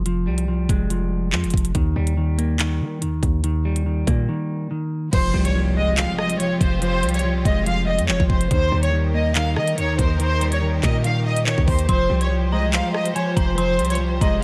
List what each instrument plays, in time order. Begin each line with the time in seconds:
Already playing: 808-style bass F1
0.06 clean electric guitar F3, closed hi-hat
0.27 808-style bass C2, clean electric guitar G3
0.38 closed hi-hat
0.48 clean electric guitar F3
0.69 808-style bass F1, clean electric guitar G#3, kick, closed hi-hat
0.90 clean electric guitar F3, closed hi-hat
1.32 808-style bass F2, clean electric guitar F3, clap
1.44 808-style bass F1, closed hi-hat
1.50 808-style bass F1, kick, closed hi-hat
1.57 closed hi-hat
1.65 closed hi-hat
1.75 808-style bass D#2, clean electric guitar D#3, kick, closed hi-hat
1.96 808-style bass D#2, clean electric guitar G3
2.07 closed hi-hat
2.17 clean electric guitar D#3
2.38 clean electric guitar A#3, closed hi-hat
2.59 clean electric guitar D#3, clap, closed hi-hat
2.81 808-style bass D#3
3.02 808-style bass D#2, clean electric guitar D#3, closed hi-hat
3.23 808-style bass D#2, kick, closed hi-hat
3.44 clean electric guitar D#3, closed hi-hat
3.65 clean electric guitar G3
3.76 closed hi-hat
3.86 clean electric guitar D#3
4.07 808-style bass A#2, clean electric guitar A#3, kick, closed hi-hat
4.29 clean electric guitar D#3
4.71 clean electric guitar D#3
5.13 808-style bass F1, string section F3 C4 F4 G4, clean electric guitar F3, violin section C5, kick, closed hi-hat, crash, impact
5.34 808-style bass C2, clean electric guitar G3
5.45 violin section C#5, closed hi-hat
5.55 clean electric guitar F3
5.76 clean electric guitar G#3, violin section D#5
5.97 clean electric guitar F3, violin section F5, clap, closed hi-hat
6.18 violin section D#5, cross-stick
6.30 closed hi-hat
6.39 clean electric guitar F3, violin section C#5, closed hi-hat
6.61 808-style bass F1, violin section C5, kick, closed hi-hat
6.82 clean electric guitar F3, violin section C5, closed hi-hat
7.03 808-style bass C2, clean electric guitar G3, closed hi-hat
7.09 closed hi-hat
7.14 violin section C#5, closed hi-hat
7.19 closed hi-hat
7.24 clean electric guitar F3
7.45 808-style bass F1, clean electric guitar G#3, violin section D#5, kick, closed hi-hat
7.66 clean electric guitar F3, violin section F5, closed hi-hat
7.87 violin section D#5
7.99 808-style bass F2, closed hi-hat
8.09 808-style bass F1, clean electric guitar F3, violin section C#5, clap
8.20 808-style bass G#1, kick
8.30 808-style bass F1, violin section C5, kick
8.41 closed hi-hat
8.51 808-style bass D#2, clean electric guitar D#3, string section D#3 D#4 G4 A#4, violin section C5, kick, closed hi-hat
8.72 808-style bass D#2, clean electric guitar G3
8.83 violin section C#5, closed hi-hat
8.93 clean electric guitar D#3
9.14 clean electric guitar A#3, violin section D#5
9.35 clean electric guitar D#3, violin section F5, clap, closed hi-hat
9.56 808-style bass D#3, violin section D#5, cross-stick
9.68 closed hi-hat
9.78 808-style bass D#2, clean electric guitar D#3, violin section C#5, closed hi-hat
9.99 808-style bass D#2, violin section C5, kick, closed hi-hat
10.20 clean electric guitar D#3, violin section C5, closed hi-hat
10.41 clean electric guitar G3, closed hi-hat
10.52 violin section C#5, closed hi-hat
10.62 clean electric guitar D#3
10.83 808-style bass A#2, clean electric guitar A#3, violin section D#5, kick, clap, closed hi-hat
11.04 clean electric guitar D#3, violin section F5, closed hi-hat
11.26 violin section D#5
11.37 closed hi-hat
11.46 clean electric guitar D#3, violin section C#5, clap
11.58 808-style bass D#2, kick
11.68 808-style bass D#2, violin section C5, kick, open hi-hat
11.79 closed hi-hat
11.89 808-style bass F1, string section F3 F4 C5, clean electric guitar F3, violin section C5, synth bell C6, kick, closed hi-hat
12.10 808-style bass C2, clean electric guitar G3
12.21 violin section C#5, closed hi-hat
12.31 clean electric guitar F3
12.52 clean electric guitar G#3, violin section D#5, synth bell A#5
12.73 clean electric guitar F3, violin section F5, clap, closed hi-hat
12.94 violin section D#5, cross-stick
13.06 closed hi-hat
13.15 clean electric guitar F3, violin section C#5, synth bell G#5, closed hi-hat
13.36 808-style bass F1, violin section C5, synth bell A#5, kick, closed hi-hat
13.58 clean electric guitar F3, violin section C5, synth bell C6, closed hi-hat
13.79 808-style bass C2, clean electric guitar G3, closed hi-hat
13.85 closed hi-hat
13.90 violin section C#5, closed hi-hat
13.95 closed hi-hat
14.00 clean electric guitar F3
14.21 808-style bass F1, clean electric guitar G#3, violin section D#5, synth bell A#5, kick, closed hi-hat